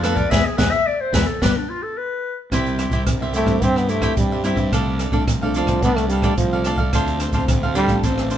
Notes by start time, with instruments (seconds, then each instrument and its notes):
Already playing: fingered electric bass F2, nylon-string guitar D3
0.03 nylon-string guitar A3 B3 F4, cavaquinho D4 A4 B4 F5, clarinet A4, cross-stick, closed hi-hat
0.16 cavaquinho A4 B4 F5, clarinet D5, kick, closed hi-hat
0.31 fingered electric bass E2, nylon-string guitar E3 G#3 B3, cavaquinho G#4 B4 E5, clarinet E5, kick, snare
0.46 clarinet G#4
0.58 fingered electric bass E2, nylon-string guitar E3 G#3 B3, cavaquinho G#4 B4 E5, clarinet B4, kick, snare
0.71 clarinet E5
0.87 clarinet D5
1.01 clarinet C5
1.13 fingered electric bass E2, nylon-string guitar E3 G#3 B3, cavaquinho G#4 B4 E5, clarinet B4, kick, snare
1.27 clarinet A4
1.42 fingered electric bass G1, nylon-string guitar F3 G3 B3, cavaquinho G4 B4 D5, clarinet B4, kick, snare
1.57 clarinet D4
1.70 clarinet F4
1.83 clarinet A4
1.97 clarinet B4
2.51 fingered electric bass C2, nylon-string guitar C3 G3 C4 E4, cavaquinho E4 G4 C5 E5, kick, cross-stick, closed hi-hat
2.66 closed hi-hat
2.79 cavaquinho E4 G4 C5 E5, cross-stick, closed hi-hat
2.90 fingered electric bass C2, nylon-string guitar G3 C4 E4, cavaquinho E4 G4 C5 E5, kick, closed hi-hat
3.07 fingered electric bass C2, nylon-string guitar G2, kick, cross-stick, closed hi-hat
3.20 nylon-string guitar G3 C4 E4, cavaquinho G4 C5 E5
3.34 trombone A3, cavaquinho E4 G4 C5 E5, closed hi-hat
3.45 fingered electric bass G2, nylon-string guitar G3 C4 E4, kick, cross-stick
3.61 fingered electric bass G2, nylon-string guitar C3 G3 C4 E4, trombone C4, cavaquinho E4 G4 C5 E5, kick, closed hi-hat
3.76 trombone B3, cross-stick
3.89 trombone A3, cavaquinho E4 G4 C5 E5, closed hi-hat
4.01 nylon-string guitar G3 C4 E4, cavaquinho E4 G4 C5 E5, kick, cross-stick, closed hi-hat
4.17 nylon-string guitar G2, fingered electric bass G2, trombone G3, kick, closed hi-hat
4.32 cavaquinho G4 C5 E5
4.43 nylon-string guitar G3 C4 E4, cavaquinho E4 G4 C5 E5, cross-stick, closed hi-hat
4.55 fingered electric bass G2, cavaquinho G4 C5 E5, kick, closed hi-hat
4.72 fingered electric bass C2, nylon-string guitar C3 F3 A3 D4, cavaquinho D4 A4 D5 F5, kick, cross-stick, closed hi-hat
4.99 cavaquinho D4 A4 D5 F5, cross-stick, closed hi-hat
5.11 fingered electric bass C2, nylon-string guitar F3 A3 D4, cavaquinho D4 A4 D5 F5, kick
5.27 fingered electric bass C2, nylon-string guitar C3, kick, cross-stick, closed hi-hat
5.41 nylon-string guitar F3 A3 D4, cavaquinho A4 D5 F5
5.54 trombone F3, cavaquinho D4 A4 D5 F5, closed hi-hat
5.66 fingered electric bass C2, nylon-string guitar F3 A3 D4, kick, cross-stick
5.82 fingered electric bass C2, nylon-string guitar C3 F3 A3 D4, trombone B3, cavaquinho D4 A4 D5 F5, kick, closed hi-hat
5.97 trombone A3, cross-stick
6.09 trombone G3, cavaquinho D4 A4 D5 F5, closed hi-hat
6.22 nylon-string guitar F3 A3 D4, cavaquinho D4 A4 D5 F5, kick, cross-stick
6.37 fingered electric bass C2, nylon-string guitar C3, trombone F3, kick, closed hi-hat
6.53 cavaquinho A4 D5 F5
6.64 nylon-string guitar F3 A3 D4, cavaquinho D4 A4 D5 F5, cross-stick, closed hi-hat
6.76 fingered electric bass C2, cavaquinho A4 D5 F5, kick
6.93 fingered electric bass D2, nylon-string guitar D3 A3 C4 F4, cavaquinho D4 A4 C5 F5, kick, cross-stick, closed hi-hat
7.07 closed hi-hat
7.19 cavaquinho D4 A4 C5 F5, cross-stick, closed hi-hat
7.31 fingered electric bass D2, nylon-string guitar A3, cavaquinho D4 A4 C5 F5, kick, closed hi-hat
7.35 nylon-string guitar C4 F4
7.48 fingered electric bass D2, nylon-string guitar A2, kick, cross-stick, closed hi-hat
7.63 nylon-string guitar A3 C4 F4, cavaquinho A4 C5 F5
7.75 trombone G3, cavaquinho D4 A4 C5 F5, closed hi-hat
7.87 fingered electric bass A1, nylon-string guitar A3 C4 F4, kick, cross-stick
8.03 fingered electric bass A1, nylon-string guitar D3 A3 C4 F4, cavaquinho D4 A4 C5 F5, kick, closed hi-hat
8.18 cross-stick
8.30 cavaquinho D4 A4 C5 F5, closed hi-hat